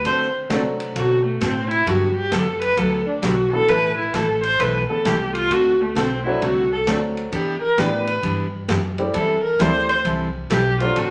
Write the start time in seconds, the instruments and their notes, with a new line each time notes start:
0.04 steel-string acoustic guitar D3 A3 C4 F#4 A4, upright bass D3, viola C5, kick, ride
0.49 upright bass C3, steel-string acoustic guitar D3 A3 C4 F#4 A4, upright piano F#3 A3 C4 D4 F#4, kick, snare, hi-hat pedal, ride
0.80 ride
0.95 upright bass B2, steel-string acoustic guitar D3 A3 C4 F#4 A4, viola F#4, kick, ride
1.26 viola A3
1.41 upright bass A2, steel-string acoustic guitar D3 A3 C4 F#4 A4, viola C4, kick, snare, hi-hat pedal, ride
1.71 viola E4, ride
1.86 upright bass G2, steel-string acoustic guitar D3 F#3 B3 D4 G4, viola F#4, kick, ride
2.17 viola G4
2.31 upright bass F#2, steel-string acoustic guitar D3 F#3 B3 D4 G4, viola A4, kick, snare, hi-hat pedal, ride
2.61 viola B4, ride
2.77 upright bass D2, steel-string acoustic guitar D3 F#3 B3 D4 G4, viola A4, kick, ride
3.08 viola D4
3.22 upright bass B1, steel-string acoustic guitar D3 F#3 B3 D4 G4, viola F#4, kick, snare, hi-hat pedal, ride
3.53 upright piano E3 A3 B3 E4 A4, viola A4
3.68 upright bass A1, steel-string acoustic guitar B2 E3 A3 E4 A4, viola B4, kick, ride
3.98 viola E4
4.14 upright bass A1, steel-string acoustic guitar B2 E3 A3 E4 A4, viola A4, kick, snare, hi-hat pedal, ride
4.43 viola C5, ride
4.59 upright bass B1, steel-string acoustic guitar B2 E3 A3 E4 A4, viola B4, kick, ride
4.89 upright piano E3 A3 B3 E4 A4, viola A4
5.05 upright bass C2, steel-string acoustic guitar B2 E3 A3 E4 A4, viola G4, kick, snare, hi-hat pedal, ride
5.35 viola F4, ride
5.50 upright bass D2, steel-string acoustic guitar D3 A3 C4 F#4 A4, viola F#4, kick, ride
5.81 viola A3
5.95 upright bass B1, steel-string acoustic guitar D3 A3 C4 F#4 A4, viola C4, kick, snare, hi-hat pedal, ride
6.26 upright piano F#3 A3 C4 D4 F#4, viola E4
6.42 upright bass C2, steel-string acoustic guitar D3 A3 C4 F#4 A4, viola F#4, kick, ride
6.72 viola A4
6.87 upright bass D2, steel-string acoustic guitar D3 A3 C4 F#4 A4, upright piano F#3 A3 C4 D4 A4, kick, snare, hi-hat pedal, ride
7.17 ride
7.32 upright bass E2, steel-string acoustic guitar E3 B3 D4 G4, viola G4, kick, ride
7.62 viola A#4
7.78 upright bass A2, steel-string acoustic guitar E3 B3 D4 G4, upright piano G3 B3 D4 E4 G4, viola B4, kick, snare, hi-hat pedal, ride
8.07 viola B4, ride
8.22 upright bass G2, steel-string acoustic guitar E3 B3 D4 G4, kick, ride
8.68 upright bass F#2, steel-string acoustic guitar E3 B3 D4 G4, kick, snare, hi-hat pedal, ride
8.98 upright piano G3 A3 C4 E4 G4, ride
9.13 upright bass E2, steel-string acoustic guitar E3 G3 C4 E4 A4, viola A4, kick, ride
9.44 viola A#4
9.59 upright bass D2, steel-string acoustic guitar E3 G3 C4 E4 A4, upright piano G3 A3 C4 E4 G4, viola C5, kick, snare, hi-hat pedal, ride
9.89 viola C5, ride
10.04 upright bass C2, steel-string acoustic guitar E3 G3 C4 E4 A4, kick, ride
10.50 upright bass B1, steel-string acoustic guitar E3 G3 C4 E4 A4, viola G4, kick, snare, hi-hat pedal, ride
10.80 upright piano F#3 A3 C4 D4 F#4, viola F4, ride
10.96 upright bass A1, steel-string acoustic guitar D3 A3 C4 F#4 A4, viola F#4, kick, ride